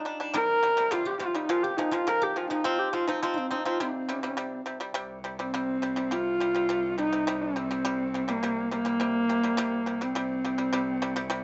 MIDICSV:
0, 0, Header, 1, 5, 480
1, 0, Start_track
1, 0, Tempo, 576923
1, 290, Time_signature, 4, 2, 24, 8
1, 9517, End_track
2, 0, Start_track
2, 0, Title_t, "Guzheng"
2, 0, Program_c, 0, 107
2, 0, Note_on_c, 0, 63, 81
2, 0, Note_on_c, 0, 65, 59
2, 0, Note_on_c, 0, 67, 78
2, 210, Note_off_c, 0, 67, 0
2, 281, Note_on_c, 0, 70, 96
2, 761, Note_off_c, 0, 65, 0
2, 765, Note_on_c, 0, 65, 73
2, 876, Note_on_c, 0, 67, 74
2, 995, Note_off_c, 0, 65, 0
2, 999, Note_on_c, 0, 65, 86
2, 1236, Note_off_c, 0, 65, 0
2, 1240, Note_on_c, 0, 65, 78
2, 1361, Note_off_c, 0, 67, 0
2, 1364, Note_on_c, 0, 67, 71
2, 1480, Note_off_c, 0, 63, 0
2, 1483, Note_on_c, 0, 63, 71
2, 1589, Note_off_c, 0, 65, 0
2, 1592, Note_on_c, 0, 65, 78
2, 1722, Note_off_c, 0, 70, 0
2, 1726, Note_on_c, 0, 70, 76
2, 1841, Note_off_c, 0, 67, 0
2, 1844, Note_on_c, 0, 67, 86
2, 2081, Note_off_c, 0, 63, 0
2, 2084, Note_on_c, 0, 63, 75
2, 2201, Note_off_c, 0, 65, 0
2, 2204, Note_on_c, 0, 65, 85
2, 2435, Note_off_c, 0, 65, 0
2, 2438, Note_on_c, 0, 65, 71
2, 2562, Note_off_c, 0, 63, 0
2, 2566, Note_on_c, 0, 63, 72
2, 2682, Note_off_c, 0, 65, 0
2, 2685, Note_on_c, 0, 65, 75
2, 2774, Note_off_c, 0, 63, 0
2, 2777, Note_on_c, 0, 63, 47
2, 2808, Note_on_c, 0, 60, 56
2, 2917, Note_off_c, 0, 63, 0
2, 2920, Note_on_c, 0, 63, 73
2, 3036, Note_off_c, 0, 65, 0
2, 3040, Note_on_c, 0, 65, 63
2, 3160, Note_off_c, 0, 60, 0
2, 3163, Note_on_c, 0, 60, 57
2, 3493, Note_off_c, 0, 70, 0
2, 3801, Note_off_c, 0, 67, 0
2, 5140, Note_off_c, 0, 65, 0
2, 5175, Note_off_c, 0, 63, 0
2, 5659, Note_off_c, 0, 60, 0
2, 9517, End_track
3, 0, Start_track
3, 0, Title_t, "Horsehead fiddle"
3, 0, Program_c, 1, 110
3, 295, Note_on_c, 1, 70, 115
3, 775, Note_on_c, 1, 65, 101
3, 787, Note_off_c, 1, 70, 0
3, 887, Note_on_c, 1, 67, 99
3, 899, Note_off_c, 1, 65, 0
3, 1002, Note_off_c, 1, 67, 0
3, 1007, Note_on_c, 1, 65, 90
3, 1127, Note_on_c, 1, 63, 91
3, 1140, Note_off_c, 1, 65, 0
3, 1245, Note_on_c, 1, 65, 103
3, 1258, Note_off_c, 1, 63, 0
3, 1356, Note_on_c, 1, 67, 94
3, 1369, Note_off_c, 1, 65, 0
3, 1476, Note_on_c, 1, 63, 92
3, 1489, Note_off_c, 1, 67, 0
3, 1604, Note_on_c, 1, 65, 90
3, 1617, Note_off_c, 1, 63, 0
3, 1732, Note_on_c, 1, 70, 101
3, 1745, Note_off_c, 1, 65, 0
3, 1858, Note_on_c, 1, 67, 88
3, 1871, Note_off_c, 1, 70, 0
3, 1972, Note_on_c, 1, 65, 90
3, 1984, Note_off_c, 1, 67, 0
3, 2081, Note_off_c, 1, 65, 0
3, 2086, Note_on_c, 1, 63, 89
3, 2201, Note_on_c, 1, 65, 93
3, 2214, Note_off_c, 1, 63, 0
3, 2321, Note_on_c, 1, 67, 92
3, 2333, Note_off_c, 1, 65, 0
3, 2446, Note_on_c, 1, 65, 95
3, 2458, Note_off_c, 1, 67, 0
3, 2561, Note_on_c, 1, 63, 81
3, 2573, Note_off_c, 1, 65, 0
3, 2685, Note_on_c, 1, 65, 80
3, 2697, Note_off_c, 1, 63, 0
3, 2814, Note_on_c, 1, 60, 77
3, 2826, Note_off_c, 1, 65, 0
3, 2939, Note_on_c, 1, 63, 75
3, 2951, Note_off_c, 1, 60, 0
3, 3050, Note_off_c, 1, 63, 0
3, 3059, Note_on_c, 1, 65, 80
3, 3173, Note_on_c, 1, 60, 76
3, 3185, Note_off_c, 1, 65, 0
3, 3886, Note_off_c, 1, 60, 0
3, 4499, Note_on_c, 1, 60, 87
3, 5095, Note_on_c, 1, 65, 96
3, 5107, Note_off_c, 1, 60, 0
3, 5805, Note_off_c, 1, 65, 0
3, 5810, Note_on_c, 1, 63, 100
3, 6168, Note_on_c, 1, 60, 91
3, 6180, Note_off_c, 1, 63, 0
3, 6897, Note_on_c, 1, 58, 88
3, 6910, Note_off_c, 1, 60, 0
3, 7248, Note_off_c, 1, 58, 0
3, 7253, Note_on_c, 1, 58, 103
3, 8339, Note_on_c, 1, 60, 91
3, 8351, Note_off_c, 1, 58, 0
3, 9517, Note_off_c, 1, 60, 0
3, 9517, End_track
4, 0, Start_track
4, 0, Title_t, "Pipa"
4, 0, Program_c, 2, 105
4, 43, Note_on_c, 2, 55, 66
4, 49, Note_on_c, 2, 62, 68
4, 142, Note_off_c, 2, 55, 0
4, 145, Note_off_c, 2, 62, 0
4, 166, Note_on_c, 2, 55, 64
4, 170, Note_on_c, 2, 62, 79
4, 263, Note_off_c, 2, 55, 0
4, 265, Note_off_c, 2, 62, 0
4, 279, Note_on_c, 2, 48, 86
4, 286, Note_on_c, 2, 55, 102
4, 475, Note_off_c, 2, 48, 0
4, 479, Note_off_c, 2, 55, 0
4, 521, Note_on_c, 2, 48, 72
4, 527, Note_on_c, 2, 55, 77
4, 620, Note_off_c, 2, 48, 0
4, 623, Note_off_c, 2, 55, 0
4, 640, Note_on_c, 2, 48, 74
4, 646, Note_on_c, 2, 55, 80
4, 740, Note_off_c, 2, 48, 0
4, 741, Note_off_c, 2, 55, 0
4, 757, Note_on_c, 2, 48, 94
4, 763, Note_on_c, 2, 55, 90
4, 953, Note_off_c, 2, 48, 0
4, 956, Note_off_c, 2, 55, 0
4, 994, Note_on_c, 2, 48, 72
4, 999, Note_on_c, 2, 55, 73
4, 1096, Note_off_c, 2, 48, 0
4, 1098, Note_off_c, 2, 55, 0
4, 1119, Note_on_c, 2, 48, 72
4, 1125, Note_on_c, 2, 55, 80
4, 1218, Note_off_c, 2, 48, 0
4, 1221, Note_off_c, 2, 55, 0
4, 1241, Note_on_c, 2, 46, 91
4, 1245, Note_on_c, 2, 53, 88
4, 1434, Note_off_c, 2, 46, 0
4, 1437, Note_off_c, 2, 53, 0
4, 1481, Note_on_c, 2, 46, 76
4, 1486, Note_on_c, 2, 53, 83
4, 1579, Note_off_c, 2, 46, 0
4, 1580, Note_off_c, 2, 53, 0
4, 1599, Note_on_c, 2, 46, 72
4, 1606, Note_on_c, 2, 53, 79
4, 1697, Note_off_c, 2, 46, 0
4, 1701, Note_off_c, 2, 53, 0
4, 1721, Note_on_c, 2, 46, 79
4, 1727, Note_on_c, 2, 53, 89
4, 1914, Note_off_c, 2, 46, 0
4, 1917, Note_off_c, 2, 53, 0
4, 1963, Note_on_c, 2, 46, 63
4, 1967, Note_on_c, 2, 53, 74
4, 2059, Note_off_c, 2, 46, 0
4, 2061, Note_off_c, 2, 53, 0
4, 2080, Note_on_c, 2, 46, 60
4, 2084, Note_on_c, 2, 53, 77
4, 2177, Note_off_c, 2, 46, 0
4, 2178, Note_off_c, 2, 53, 0
4, 2199, Note_on_c, 2, 53, 100
4, 2205, Note_on_c, 2, 60, 101
4, 2392, Note_off_c, 2, 53, 0
4, 2394, Note_off_c, 2, 60, 0
4, 2437, Note_on_c, 2, 53, 69
4, 2443, Note_on_c, 2, 60, 68
4, 2535, Note_off_c, 2, 53, 0
4, 2538, Note_off_c, 2, 60, 0
4, 2559, Note_on_c, 2, 53, 74
4, 2565, Note_on_c, 2, 60, 81
4, 2656, Note_off_c, 2, 53, 0
4, 2659, Note_off_c, 2, 60, 0
4, 2683, Note_on_c, 2, 53, 84
4, 2689, Note_on_c, 2, 60, 93
4, 2874, Note_off_c, 2, 53, 0
4, 2876, Note_off_c, 2, 60, 0
4, 2916, Note_on_c, 2, 53, 67
4, 2921, Note_on_c, 2, 60, 71
4, 3015, Note_off_c, 2, 53, 0
4, 3017, Note_off_c, 2, 60, 0
4, 3041, Note_on_c, 2, 53, 75
4, 3047, Note_on_c, 2, 60, 79
4, 3136, Note_off_c, 2, 53, 0
4, 3140, Note_off_c, 2, 60, 0
4, 3163, Note_on_c, 2, 48, 80
4, 3167, Note_on_c, 2, 55, 91
4, 3353, Note_off_c, 2, 48, 0
4, 3355, Note_off_c, 2, 55, 0
4, 3399, Note_on_c, 2, 48, 74
4, 3405, Note_on_c, 2, 55, 80
4, 3495, Note_off_c, 2, 48, 0
4, 3498, Note_off_c, 2, 55, 0
4, 3520, Note_on_c, 2, 48, 73
4, 3526, Note_on_c, 2, 55, 76
4, 3616, Note_off_c, 2, 48, 0
4, 3619, Note_off_c, 2, 55, 0
4, 3635, Note_on_c, 2, 48, 80
4, 3640, Note_on_c, 2, 55, 94
4, 3829, Note_off_c, 2, 48, 0
4, 3832, Note_off_c, 2, 55, 0
4, 3875, Note_on_c, 2, 48, 70
4, 3881, Note_on_c, 2, 55, 74
4, 3973, Note_off_c, 2, 48, 0
4, 3976, Note_off_c, 2, 55, 0
4, 3994, Note_on_c, 2, 48, 67
4, 3999, Note_on_c, 2, 55, 82
4, 4093, Note_off_c, 2, 48, 0
4, 4095, Note_off_c, 2, 55, 0
4, 4112, Note_on_c, 2, 48, 96
4, 4118, Note_on_c, 2, 55, 104
4, 4308, Note_off_c, 2, 48, 0
4, 4311, Note_off_c, 2, 55, 0
4, 4360, Note_on_c, 2, 48, 65
4, 4366, Note_on_c, 2, 55, 64
4, 4456, Note_off_c, 2, 48, 0
4, 4459, Note_off_c, 2, 55, 0
4, 4485, Note_on_c, 2, 48, 69
4, 4490, Note_on_c, 2, 55, 74
4, 4578, Note_off_c, 2, 48, 0
4, 4581, Note_off_c, 2, 55, 0
4, 4607, Note_on_c, 2, 48, 85
4, 4613, Note_on_c, 2, 55, 96
4, 4797, Note_off_c, 2, 48, 0
4, 4797, Note_off_c, 2, 55, 0
4, 4843, Note_on_c, 2, 48, 67
4, 4849, Note_on_c, 2, 55, 69
4, 4938, Note_off_c, 2, 48, 0
4, 4941, Note_off_c, 2, 55, 0
4, 4960, Note_on_c, 2, 48, 68
4, 4968, Note_on_c, 2, 55, 74
4, 5056, Note_off_c, 2, 48, 0
4, 5060, Note_off_c, 2, 55, 0
4, 5084, Note_on_c, 2, 48, 76
4, 5090, Note_on_c, 2, 55, 95
4, 5274, Note_off_c, 2, 48, 0
4, 5277, Note_off_c, 2, 55, 0
4, 5328, Note_on_c, 2, 48, 69
4, 5335, Note_on_c, 2, 55, 78
4, 5420, Note_off_c, 2, 48, 0
4, 5424, Note_off_c, 2, 55, 0
4, 5446, Note_on_c, 2, 48, 65
4, 5454, Note_on_c, 2, 55, 71
4, 5540, Note_off_c, 2, 48, 0
4, 5544, Note_off_c, 2, 55, 0
4, 5565, Note_on_c, 2, 48, 85
4, 5574, Note_on_c, 2, 55, 86
4, 5756, Note_off_c, 2, 48, 0
4, 5760, Note_off_c, 2, 55, 0
4, 5805, Note_on_c, 2, 48, 54
4, 5810, Note_on_c, 2, 55, 65
4, 5899, Note_off_c, 2, 48, 0
4, 5902, Note_off_c, 2, 55, 0
4, 5928, Note_on_c, 2, 48, 62
4, 5932, Note_on_c, 2, 55, 67
4, 6021, Note_off_c, 2, 48, 0
4, 6023, Note_off_c, 2, 55, 0
4, 6049, Note_on_c, 2, 48, 88
4, 6055, Note_on_c, 2, 55, 103
4, 6238, Note_off_c, 2, 48, 0
4, 6241, Note_off_c, 2, 55, 0
4, 6289, Note_on_c, 2, 48, 68
4, 6294, Note_on_c, 2, 55, 65
4, 6382, Note_off_c, 2, 48, 0
4, 6384, Note_off_c, 2, 55, 0
4, 6412, Note_on_c, 2, 48, 67
4, 6416, Note_on_c, 2, 55, 68
4, 6504, Note_off_c, 2, 48, 0
4, 6506, Note_off_c, 2, 55, 0
4, 6528, Note_on_c, 2, 48, 90
4, 6532, Note_on_c, 2, 55, 97
4, 6718, Note_off_c, 2, 48, 0
4, 6720, Note_off_c, 2, 55, 0
4, 6775, Note_on_c, 2, 48, 63
4, 6781, Note_on_c, 2, 55, 72
4, 6865, Note_off_c, 2, 48, 0
4, 6868, Note_off_c, 2, 55, 0
4, 6888, Note_on_c, 2, 48, 63
4, 6894, Note_on_c, 2, 55, 79
4, 6982, Note_off_c, 2, 48, 0
4, 6985, Note_off_c, 2, 55, 0
4, 7011, Note_on_c, 2, 48, 82
4, 7018, Note_on_c, 2, 55, 87
4, 7200, Note_off_c, 2, 48, 0
4, 7204, Note_off_c, 2, 55, 0
4, 7250, Note_on_c, 2, 48, 71
4, 7257, Note_on_c, 2, 55, 70
4, 7344, Note_off_c, 2, 48, 0
4, 7347, Note_off_c, 2, 55, 0
4, 7362, Note_on_c, 2, 48, 68
4, 7370, Note_on_c, 2, 55, 72
4, 7460, Note_off_c, 2, 48, 0
4, 7464, Note_off_c, 2, 55, 0
4, 7486, Note_on_c, 2, 48, 82
4, 7494, Note_on_c, 2, 55, 84
4, 7679, Note_off_c, 2, 48, 0
4, 7681, Note_off_c, 2, 55, 0
4, 7732, Note_on_c, 2, 48, 65
4, 7736, Note_on_c, 2, 55, 68
4, 7826, Note_off_c, 2, 48, 0
4, 7827, Note_off_c, 2, 55, 0
4, 7850, Note_on_c, 2, 48, 74
4, 7855, Note_on_c, 2, 55, 76
4, 7944, Note_off_c, 2, 48, 0
4, 7947, Note_off_c, 2, 55, 0
4, 7964, Note_on_c, 2, 48, 103
4, 7972, Note_on_c, 2, 55, 118
4, 8158, Note_off_c, 2, 48, 0
4, 8162, Note_off_c, 2, 55, 0
4, 8206, Note_on_c, 2, 48, 67
4, 8213, Note_on_c, 2, 55, 66
4, 8303, Note_off_c, 2, 48, 0
4, 8306, Note_off_c, 2, 55, 0
4, 8329, Note_on_c, 2, 48, 62
4, 8333, Note_on_c, 2, 55, 75
4, 8424, Note_off_c, 2, 48, 0
4, 8427, Note_off_c, 2, 55, 0
4, 8447, Note_on_c, 2, 48, 95
4, 8454, Note_on_c, 2, 55, 98
4, 8640, Note_off_c, 2, 48, 0
4, 8643, Note_off_c, 2, 55, 0
4, 8690, Note_on_c, 2, 48, 67
4, 8695, Note_on_c, 2, 55, 77
4, 8786, Note_off_c, 2, 48, 0
4, 8788, Note_off_c, 2, 55, 0
4, 8802, Note_on_c, 2, 48, 64
4, 8806, Note_on_c, 2, 55, 76
4, 8902, Note_off_c, 2, 48, 0
4, 8904, Note_off_c, 2, 55, 0
4, 8924, Note_on_c, 2, 48, 104
4, 8930, Note_on_c, 2, 55, 112
4, 9119, Note_off_c, 2, 48, 0
4, 9122, Note_off_c, 2, 55, 0
4, 9167, Note_on_c, 2, 48, 83
4, 9171, Note_on_c, 2, 55, 95
4, 9265, Note_off_c, 2, 48, 0
4, 9266, Note_off_c, 2, 55, 0
4, 9284, Note_on_c, 2, 48, 85
4, 9289, Note_on_c, 2, 55, 96
4, 9383, Note_off_c, 2, 48, 0
4, 9386, Note_off_c, 2, 55, 0
4, 9399, Note_on_c, 2, 48, 100
4, 9404, Note_on_c, 2, 55, 110
4, 9517, Note_off_c, 2, 48, 0
4, 9517, Note_off_c, 2, 55, 0
4, 9517, End_track
5, 0, Start_track
5, 0, Title_t, "Cello"
5, 0, Program_c, 3, 42
5, 4127, Note_on_c, 3, 36, 65
5, 7977, Note_off_c, 3, 36, 0
5, 7982, Note_on_c, 3, 36, 63
5, 9517, Note_off_c, 3, 36, 0
5, 9517, End_track
0, 0, End_of_file